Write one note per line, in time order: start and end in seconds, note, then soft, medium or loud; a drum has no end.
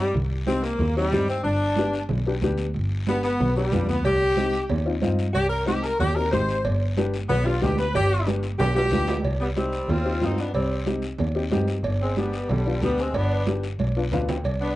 0.00 0.14 G3 loud
0.14 0.66 C2 loud
0.14 high conga soft
0.14 low conga medium
0.14 long guiro medium
0.46 0.64 C4 medium
0.46 0.63 C4 medium
0.46 0.65 D#4 medium
0.46 0.65 G4 medium
0.46 high conga medium
0.46 short guiro medium
0.63 0.95 A#3 medium
0.63 short guiro medium
0.79 1.05 D#2 loud
0.79 high conga soft
0.79 low conga medium
0.79 long guiro medium
0.96 1.28 G3 loud
0.96 1.02 C4 medium
0.96 1.02 D#4 medium
0.96 1.02 G4 medium
1.11 1.38 G2 medium
1.11 1.35 C4 medium
1.11 1.35 D#4 medium
1.11 1.36 G4 medium
1.11 high conga medium
1.11 low conga medium
1.11 short guiro medium
1.28 1.45 C4 medium
1.28 short guiro medium
1.44 1.96 G1 loud
1.44 2.07 D4 loud
1.44 high conga soft
1.44 long guiro medium
1.76 1.95 B3 medium
1.76 1.95 D4 medium
1.76 1.95 G4 medium
1.76 high conga medium
1.76 short guiro medium
1.94 short guiro medium
2.09 2.35 B1 loud
2.09 high conga soft
2.09 low conga medium
2.09 long guiro medium
2.27 2.32 B3 medium
2.27 2.33 D4 medium
2.27 2.33 G4 medium
2.41 2.68 D2 loud
2.41 2.66 B3 medium
2.41 2.66 D4 medium
2.41 2.66 G4 loud
2.41 high conga medium
2.41 short guiro medium
2.58 short guiro medium
2.74 3.27 G1 loud
2.74 high conga soft
2.74 long guiro medium
3.07 3.25 B3 medium
3.07 3.23 B3 medium
3.07 3.25 D4 medium
3.07 3.25 G4 medium
3.07 high conga medium
3.07 short guiro medium
3.23 3.55 B3 medium
3.23 short guiro medium
3.39 3.66 B1 loud
3.39 high conga soft
3.39 low conga medium
3.39 long guiro medium
3.56 3.88 G3 medium
3.56 3.62 B3 medium
3.56 3.62 D4 medium
3.56 3.63 G4 medium
3.72 3.87 F2 medium
3.72 3.95 B3 medium
3.72 3.96 D4 medium
3.72 3.96 F4 medium
3.72 high conga medium
3.72 low conga medium
3.72 short guiro medium
3.88 4.03 D2 medium
3.88 4.05 B3 medium
3.88 short guiro medium
4.04 4.56 C2 loud
4.04 4.68 G4 loud
4.04 cowbell loud
4.04 high conga soft
4.04 long guiro medium
4.37 4.54 C4 medium
4.37 4.55 D#4 medium
4.37 4.55 G4 medium
4.37 high conga medium
4.37 short guiro medium
4.53 short guiro medium
4.70 4.96 D#2 loud
4.70 cowbell medium
4.70 high conga soft
4.70 low conga medium
4.70 long guiro medium
4.86 4.92 C4 medium
4.86 4.92 D#4 medium
4.86 4.92 F4 medium
5.02 5.29 G2 loud
5.02 5.25 C4 medium
5.02 5.25 D#4 medium
5.02 5.25 F4 medium
5.02 high conga medium
5.02 short guiro medium
5.19 short guiro medium
5.34 5.87 C2 loud
5.34 5.50 G4 loud
5.34 cowbell loud
5.34 high conga soft
5.34 long guiro medium
5.50 5.66 A#4 medium
5.66 5.84 C4 medium
5.66 5.84 D#4 medium
5.66 5.84 G4 medium
5.66 5.83 G4 medium
5.66 high conga medium
5.66 short guiro medium
5.83 5.99 A#4 medium
5.83 short guiro medium
6.00 6.26 D#2 loud
6.00 6.16 G4 loud
6.00 cowbell medium
6.00 high conga soft
6.00 low conga medium
6.00 long guiro medium
6.16 6.22 C4 medium
6.16 6.22 D#4 medium
6.16 6.22 G4 medium
6.16 6.32 A#4 loud
6.32 6.58 G#1 loud
6.32 6.55 C4 medium
6.32 6.55 D#4 medium
6.32 6.55 G4 medium
6.32 6.63 C5 loud
6.32 high conga medium
6.32 low conga medium
6.32 short guiro medium
6.49 short guiro medium
6.65 7.17 G1 loud
6.65 cowbell loud
6.65 high conga soft
6.65 long guiro medium
6.97 7.15 B3 medium
6.97 7.14 D4 medium
6.97 7.15 G4 loud
6.97 high conga medium
6.97 short guiro medium
7.14 short guiro medium
7.29 7.55 B1 loud
7.29 7.45 B3 loud
7.29 cowbell medium
7.29 high conga soft
7.29 low conga medium
7.29 long guiro medium
7.45 7.52 B3 medium
7.45 7.52 D4 medium
7.45 7.61 F4 loud
7.45 7.52 G4 medium
7.61 7.88 D2 loud
7.61 7.84 B3 medium
7.61 7.84 D4 medium
7.61 7.85 G4 medium
7.61 7.78 G4 loud
7.61 high conga medium
7.61 low timbale medium
7.61 short guiro medium
7.78 7.94 B4 medium
7.78 short guiro medium
7.94 8.46 G1 loud
7.94 8.26 G4 loud
7.94 cowbell loud
7.94 high conga soft
7.94 low conga medium
7.94 long guiro medium
8.26 8.44 B3 medium
8.26 8.44 D4 medium
8.26 8.44 G4 medium
8.26 high conga medium
8.26 short guiro medium
8.43 short guiro medium
8.58 8.85 B1 loud
8.58 8.74 G4 loud
8.58 cowbell medium
8.58 high conga soft
8.58 low conga medium
8.58 high timbale medium
8.58 long guiro medium
8.75 8.81 B3 medium
8.75 8.82 D4 medium
8.75 8.82 F4 medium
8.75 9.23 G4 loud
8.75 low timbale medium
8.91 9.17 D2 loud
8.91 9.14 B3 medium
8.91 9.15 D4 medium
8.91 9.15 F4 medium
8.91 high conga medium
8.91 short guiro medium
9.07 low timbale medium
9.07 short guiro medium
9.24 9.76 C2 loud
9.24 cowbell loud
9.24 long guiro medium
9.41 9.48 G3 medium
9.41 9.48 B3 medium
9.56 9.87 G3 medium
9.56 9.87 C4 medium
9.56 9.74 C4 medium
9.56 9.74 D#4 medium
9.56 9.74 G4 medium
9.56 high conga medium
9.56 short guiro medium
9.73 short guiro medium
9.88 10.15 D#2 loud
9.88 10.21 C4 medium
9.88 10.22 F4 loud
9.88 cowbell medium
9.88 high conga soft
9.88 low conga medium
9.88 long guiro medium
10.04 10.11 C4 medium
10.04 10.11 D#4 medium
10.04 10.11 G4 medium
10.21 10.47 G2 medium
10.21 10.44 C4 medium
10.21 10.38 C4 medium
10.21 10.44 D#4 medium
10.21 10.39 D#4 medium
10.21 10.44 F4 medium
10.21 high conga medium
10.21 low timbale medium
10.21 short guiro medium
10.38 10.55 B3 medium
10.38 10.55 D4 medium
10.38 short guiro medium
10.54 11.06 C2 loud
10.54 10.84 G3 medium
10.54 10.85 C4 medium
10.54 cowbell loud
10.54 high conga soft
10.54 long guiro medium
10.86 11.04 C4 medium
10.86 11.04 D#4 medium
10.86 11.04 G4 medium
10.86 high conga medium
10.86 short guiro medium
11.02 short guiro medium
11.18 11.45 D#2 loud
11.18 cowbell medium
11.18 high conga soft
11.18 low conga medium
11.18 long guiro medium
11.35 11.41 C4 medium
11.35 11.41 D#4 medium
11.35 11.41 G4 medium
11.51 11.77 G2 loud
11.51 11.74 C4 medium
11.51 11.75 D#4 medium
11.51 11.75 G4 loud
11.51 high conga medium
11.51 low timbale medium
11.51 short guiro medium
11.68 short guiro medium
11.83 12.36 G1 loud
11.83 cowbell loud
11.83 high conga soft
11.83 long guiro medium
12.02 12.16 G#3 medium
12.02 12.16 C4 medium
12.16 12.47 G3 medium
12.16 12.34 B3 medium
12.16 12.47 B3 medium
12.16 12.34 D4 medium
12.16 12.34 G4 medium
12.16 high conga medium
12.16 short guiro medium
12.33 short guiro medium
12.49 12.75 B1 loud
12.49 12.82 D3 medium
12.49 12.82 G3 medium
12.49 cowbell medium
12.49 high conga soft
12.49 low conga medium
12.49 long guiro medium
12.66 12.72 B3 medium
12.66 12.72 D4 medium
12.66 12.72 F4 medium
12.81 13.08 D2 medium
12.81 12.98 G3 medium
12.81 13.05 B3 medium
12.81 12.98 B3 medium
12.81 13.05 D4 medium
12.81 13.05 G4 medium
12.81 high conga medium
12.81 short guiro medium
12.98 13.15 G#3 medium
12.98 13.16 C4 loud
12.98 short guiro medium
13.14 13.66 G1 loud
13.14 13.47 B3 medium
13.14 13.48 D4 loud
13.14 cowbell loud
13.14 high conga soft
13.14 long guiro medium
13.47 13.64 B3 medium
13.47 13.65 D4 medium
13.47 13.65 G4 medium
13.47 high conga medium
13.47 short guiro medium
13.63 short guiro medium
13.79 14.05 B1 loud
13.79 cowbell medium
13.79 high conga medium
13.79 long guiro medium
13.97 14.02 B3 medium
13.97 14.02 D4 medium
13.97 14.02 F4 medium
14.11 14.37 D2 medium
14.11 14.34 B3 medium
14.11 14.35 D4 medium
14.11 14.35 F4 medium
14.11 14.27 F5 medium
14.11 low conga medium
14.11 short guiro medium
14.28 14.43 G5 medium
14.28 low conga medium
14.28 short guiro medium
14.43 14.76 C2 medium
14.43 cowbell loud
14.43 high conga soft
14.43 long guiro medium
14.61 14.76 B3 medium
14.61 14.76 D4 medium